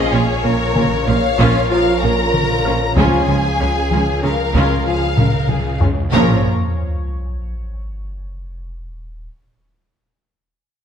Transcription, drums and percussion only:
0.76 taiko mid medium
1.39 taiko medium
2.34 taiko mid medium
2.97 taiko loud
3.91 taiko mid medium
4.54 taiko medium
5.18 taiko low-mid medium
5.49 taiko low-mid loud
5.81 taiko low loud

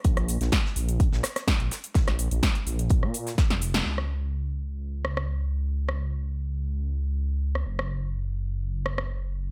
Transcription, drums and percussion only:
0.04 kick loud
0.04 closed hi-hat medium
0.04 shaker soft
0.17 cross-stick medium
0.17 closed hi-hat soft
0.28 closed hi-hat medium
0.28 open hi-hat loud
0.28 shaker medium
0.41 snare soft
0.41 closed hi-hat medium
0.41 shaker soft
0.52 kick loud
0.52 snare loud
0.52 closed hi-hat medium
0.52 shaker soft
0.66 snare medium
0.76 closed hi-hat medium
0.76 open hi-hat medium
0.76 shaker medium
0.89 closed hi-hat medium
0.89 shaker soft
1.00 kick loud
1.00 closed hi-hat medium
1.00 shaker soft
1.13 snare medium
1.23 cross-stick medium
1.23 snare loud
1.23 closed hi-hat medium
1.23 open hi-hat loud
1.23 shaker medium
1.36 cross-stick medium
1.36 snare soft
1.36 closed hi-hat medium
1.36 shaker soft
1.48 kick loud
1.48 snare loud
1.48 closed hi-hat medium
1.48 shaker soft
1.60 closed hi-hat soft
1.71 snare loud
1.71 closed hi-hat medium
1.71 open hi-hat loud
1.71 shaker medium
1.84 closed hi-hat medium
1.84 closed hi-hat soft
1.84 shaker soft
1.94 kick loud
1.94 snare loud
1.94 closed hi-hat medium
1.94 shaker soft
2.08 cross-stick medium
2.08 snare soft
2.08 closed hi-hat soft
2.19 closed hi-hat medium
2.19 open hi-hat loud
2.19 shaker medium
2.31 closed hi-hat medium
2.31 shaker soft
2.43 kick loud
2.43 snare loud
2.43 closed hi-hat medium
2.43 shaker soft
2.55 closed hi-hat soft
2.67 closed hi-hat medium
2.67 open hi-hat loud
2.67 shaker medium
2.79 closed hi-hat medium
2.79 shaker soft
2.90 kick loud
2.90 closed hi-hat medium
2.90 shaker soft
3.03 cross-stick medium
3.14 closed hi-hat medium
3.14 open hi-hat loud
3.14 shaker medium
3.27 snare soft
3.27 open hi-hat medium
3.27 shaker soft
3.38 kick loud
3.38 snare medium
3.38 snare loud
3.38 closed hi-hat medium
3.38 shaker soft
3.50 snare medium
3.50 closed hi-hat soft
3.61 closed hi-hat medium
3.61 open hi-hat loud
3.61 shaker medium
3.74 snare medium
3.74 closed hi-hat medium
3.74 shaker soft
3.98 cross-stick medium
5.05 cross-stick medium
5.17 cross-stick medium
5.89 cross-stick medium
7.55 cross-stick medium
7.79 cross-stick medium
8.86 cross-stick medium
8.98 cross-stick medium

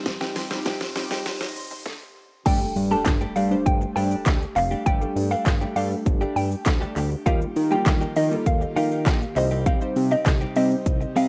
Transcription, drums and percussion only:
0.06 kick loud
0.06 snare loud
0.06 closed hi-hat medium
0.06 shaker medium
0.21 snare loud
0.21 shaker medium
0.36 snare loud
0.36 open hi-hat medium
0.36 shaker medium
0.51 snare loud
0.51 shaker medium
0.66 kick loud
0.66 snare loud
0.66 clap medium
0.66 closed hi-hat medium
0.66 shaker medium
0.81 snare loud
0.81 shaker medium
0.96 snare loud
0.96 open hi-hat medium
0.96 shaker medium
1.11 snare loud
1.11 shaker medium
1.26 snare loud
1.26 closed hi-hat medium
1.26 shaker medium
1.41 snare loud
1.41 shaker medium
1.56 open hi-hat medium
1.56 shaker medium
1.71 shaker medium
1.86 kick loud
1.86 snare medium
2.46 kick loud
2.46 closed hi-hat medium
2.46 crash loud
2.46 shaker medium
2.61 shaker medium
2.76 open hi-hat medium
2.76 shaker medium
2.91 shaker medium
3.06 kick loud
3.06 snare medium
3.06 clap loud
3.06 clap medium
3.06 closed hi-hat medium
3.06 shaker medium
3.21 shaker medium
3.36 open hi-hat medium
3.36 shaker medium
3.51 shaker medium
3.66 kick loud
3.66 closed hi-hat medium
3.66 shaker medium
3.81 shaker medium
3.97 open hi-hat medium
3.97 shaker medium
4.11 shaker medium
4.26 kick loud
4.26 snare medium
4.26 clap loud
4.26 closed hi-hat medium
4.26 shaker medium
4.42 shaker medium
4.56 clap medium
4.56 open hi-hat medium
4.56 shaker medium
4.72 shaker medium
4.86 kick loud
4.86 closed hi-hat medium
4.86 shaker medium
5.02 shaker medium
5.17 open hi-hat medium
5.17 shaker medium
5.32 shaker medium
5.46 kick loud
5.46 snare medium
5.46 clap medium
5.46 clap loud
5.46 closed hi-hat medium
5.46 shaker medium
5.61 shaker medium
5.76 open hi-hat medium
5.76 shaker medium
5.91 shaker medium
6.06 kick loud
6.06 closed hi-hat medium
6.06 shaker medium
6.21 shaker medium
6.36 open hi-hat medium
6.36 shaker medium
6.51 shaker medium
6.66 kick loud
6.66 snare medium
6.66 clap loud
6.66 closed hi-hat medium
6.66 shaker medium
6.82 shaker medium
6.96 clap medium
6.96 open hi-hat medium
6.96 shaker medium
7.11 shaker medium
7.26 kick loud
7.26 closed hi-hat medium
7.26 shaker medium
7.41 shaker medium
7.56 open hi-hat medium
7.56 shaker medium
7.71 shaker medium
7.86 kick loud
7.86 snare medium
7.86 clap medium
7.86 clap loud
7.86 closed hi-hat medium
7.86 shaker medium
8.01 shaker medium
8.16 open hi-hat medium
8.16 shaker medium
8.31 shaker medium
8.46 kick loud
8.46 closed hi-hat medium
8.46 shaker medium
8.61 shaker medium
8.77 open hi-hat medium
8.77 shaker medium
8.91 shaker medium
9.06 kick loud
9.06 snare medium
9.06 clap loud
9.06 closed hi-hat medium
9.06 shaker medium
9.22 shaker medium
9.36 clap medium
9.36 open hi-hat medium
9.36 shaker medium
9.51 shaker medium
9.66 kick loud
9.66 closed hi-hat medium
9.66 shaker medium
9.81 shaker medium
9.96 open hi-hat medium
9.96 shaker medium
10.11 shaker medium
10.26 kick loud
10.26 snare medium
10.26 clap medium
10.26 clap loud
10.26 closed hi-hat medium
10.26 shaker medium
10.41 shaker medium
10.56 open hi-hat medium
10.56 shaker medium
10.71 shaker medium
10.86 kick loud
10.86 closed hi-hat medium
10.86 shaker medium
11.01 shaker medium
11.16 open hi-hat medium
11.16 shaker medium

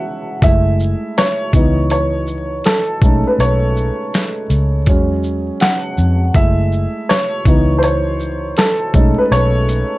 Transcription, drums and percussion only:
0.42 kick loud
0.42 closed hi-hat medium
0.80 shaker soft
1.18 snare medium
1.18 closed hi-hat medium
1.53 kick loud
1.53 closed hi-hat medium
1.53 shaker medium
1.90 closed hi-hat medium
2.27 shaker soft
2.64 snare loud
2.64 closed hi-hat medium
3.02 kick loud
3.02 shaker soft
3.40 closed hi-hat medium
3.77 shaker soft
4.14 snare medium
4.14 closed hi-hat medium
4.50 closed hi-hat medium
4.50 shaker medium
4.86 kick loud
4.86 closed hi-hat medium
5.24 shaker soft
5.60 snare loud
5.60 closed hi-hat medium
5.98 shaker soft
6.34 kick loud
6.34 closed hi-hat medium
6.72 shaker soft
7.10 snare medium
7.10 closed hi-hat medium
7.45 kick loud
7.45 closed hi-hat medium
7.45 shaker medium
7.83 closed hi-hat medium
8.20 shaker soft
8.57 snare loud
8.57 closed hi-hat medium
8.94 kick loud
8.94 shaker soft
9.32 closed hi-hat medium
9.69 closed hi-hat soft
9.69 shaker soft

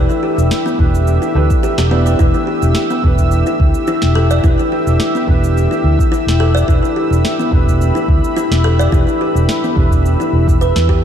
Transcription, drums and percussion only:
0.10 shaker soft
0.38 shaker medium
0.51 snare medium
0.51 shaker medium
0.67 shaker soft
0.79 kick medium
0.95 shaker medium
1.07 shaker medium
1.22 shaker soft
1.50 kick loud
1.50 shaker medium
1.63 shaker medium
1.78 snare medium
1.78 shaker soft
2.06 shaker medium
2.19 kick loud
2.19 shaker soft
2.34 shaker soft
2.62 shaker medium
2.75 snare medium
2.75 shaker medium
2.90 shaker soft
3.04 kick medium
3.18 kick medium
3.18 shaker medium
3.31 shaker medium
3.46 shaker soft
3.60 kick loud
3.74 shaker medium
3.87 shaker medium
4.02 snare medium
4.02 shaker soft
4.31 shaker medium
4.44 kick loud
4.44 shaker soft
4.59 shaker soft
4.87 shaker medium
5.00 snare medium
5.00 shaker medium
5.16 shaker soft
5.28 kick medium
5.44 shaker medium
5.57 shaker soft
5.72 shaker soft
5.99 kick loud
5.99 shaker medium
6.13 shaker medium
6.28 snare medium
6.28 shaker soft
6.57 shaker medium
6.68 kick loud
6.68 shaker soft
6.85 shaker soft
7.13 shaker medium
7.25 snare medium
7.25 shaker medium
7.40 shaker soft
7.52 kick loud
7.67 kick soft
7.67 shaker medium
7.81 shaker medium
7.96 shaker soft
8.08 kick medium
8.24 shaker medium
8.37 shaker medium
8.52 snare medium
8.52 shaker soft
8.80 shaker medium
8.92 kick loud
8.92 shaker soft
9.08 shaker soft
9.36 shaker medium
9.49 snare medium
9.49 shaker medium
9.64 shaker soft
9.77 kick medium
9.92 kick medium
9.92 shaker medium
10.06 shaker medium
10.21 shaker soft
10.48 kick loud
10.48 shaker medium
10.61 shaker medium
10.76 snare medium
10.76 shaker soft
10.89 kick medium

